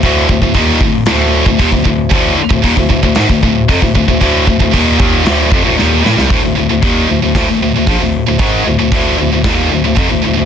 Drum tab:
HH |o---o---o---o---|o---o---o---o---|o---o---o-------|o---o---o---o---|
SD |--------o-------|--------o-------|--------o---o-oo|--------o-------|
BD |o-ooo-o----oooo-|o--ooooo-oo-oooo|o-ooo-o---o-----|o---o---o---o---|

HH |o---o---o---o---|
SD |--------o-------|
BD |o---o---o---o---|